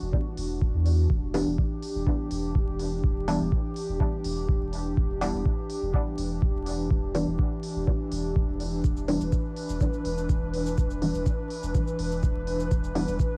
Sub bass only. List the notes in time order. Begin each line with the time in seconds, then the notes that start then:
0.01 E1
0.37 E1
0.74 E2
1.10 E1
1.47 E1
1.95 E1
2.31 E1
2.68 E1
3.04 E1
3.40 E1
3.89 E1
4.24 E1
4.61 E1
4.97 E1
5.34 E1
5.82 E1
6.18 E1
6.55 E1
6.91 E1
7.27 E1
7.76 E1
8.12 E1
8.48 E1
8.84 E1
9.21 E1
9.69 E1
10.05 E1
10.42 E1
10.78 E1
11.14 E1
11.63 E1
11.99 E1
12.35 E1
12.71 E1
13.08 E1